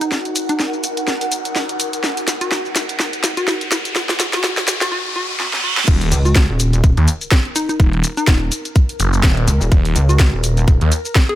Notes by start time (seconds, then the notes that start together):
Already playing: D#4 F#4 A#4 F#5, riser
0.01 D#4, closed hi-hat, shaker
0.12 snare, shaker
0.25 closed hi-hat, shaker
0.36 open hi-hat, shaker
0.49 D#4, closed hi-hat, shaker
0.60 snare, shaker
0.73 shaker
0.84 open hi-hat, shaker
0.97 closed hi-hat, shaker
1.08 snare, shaker
1.21 open hi-hat, shaker
1.32 open hi-hat, shaker
1.45 closed hi-hat, shaker
1.56 snare, shaker
1.69 closed hi-hat, shaker
1.80 open hi-hat, shaker
1.93 closed hi-hat, shaker
2.04 snare, shaker
2.17 open hi-hat, shaker
2.28 snare, open hi-hat, shaker
2.41 F#4, closed hi-hat, shaker
2.52 snare, shaker
2.65 shaker
2.76 snare, open hi-hat, shaker
2.89 closed hi-hat, shaker
3.00 snare, shaker
3.13 closed hi-hat, shaker
3.24 snare, open hi-hat, shaker
3.37 F#4, closed hi-hat, shaker
3.48 snare, shaker
3.61 closed hi-hat, shaker
3.72 snare, open hi-hat, shaker
3.85 closed hi-hat, shaker
3.96 snare, shaker
4.09 snare, closed hi-hat, shaker
4.20 snare, open hi-hat, shaker
4.33 F#4, snare, closed hi-hat, shaker
4.44 snare, shaker
4.57 snare, shaker
4.68 snare, open hi-hat, shaker
4.81 F#4, snare, closed hi-hat, shaker
4.92 F#4, reverse cymbal
5.16 F#4
5.40 F#4, snare
5.53 snare
5.64 F#4
5.77 snare
5.88 D#1, kick, closed hi-hat, crash, impact, shaker
6.01 A#4, open hi-hat
6.12 C#2, open hi-hat, shaker
6.25 F#4, closed hi-hat, shaker
6.36 kick, snare, closed hi-hat, shaker
6.49 D#1
6.60 open hi-hat, shaker
6.73 closed hi-hat, shaker
6.84 D#1, kick, closed hi-hat, shaker
6.97 D#2, closed hi-hat
7.08 open hi-hat, shaker
7.21 closed hi-hat, shaker
7.31 kick, snare, closed hi-hat, shaker
7.45 closed hi-hat
7.56 D#4, open hi-hat, shaker
7.69 D#4, closed hi-hat, shaker
7.80 D#1, kick, closed hi-hat, shaker
7.93 closed hi-hat
8.04 open hi-hat, shaker
8.17 D#4, closed hi-hat, shaker
8.27 D#1, kick, snare, closed hi-hat, shaker
8.52 open hi-hat, shaker
8.65 closed hi-hat, shaker
8.76 kick, closed hi-hat, shaker
8.89 open hi-hat
9.00 F#1, open hi-hat, shaker
9.13 closed hi-hat, shaker
9.23 D#1, kick, snare, closed hi-hat, shaker
9.37 closed hi-hat
9.48 C#2, open hi-hat, shaker
9.61 D#1, closed hi-hat, shaker
9.72 D#1, kick, closed hi-hat, shaker
9.85 open hi-hat
9.96 C#2, open hi-hat, shaker
10.09 F#4, closed hi-hat, shaker
10.19 kick, snare, closed hi-hat, shaker
10.33 D#1
10.44 open hi-hat, shaker
10.57 closed hi-hat, shaker
10.68 D#1, kick, closed hi-hat, shaker
10.81 D#2, closed hi-hat
10.92 open hi-hat, shaker
11.05 closed hi-hat, shaker
11.15 kick, snare, closed hi-hat, shaker
11.29 G#4, closed hi-hat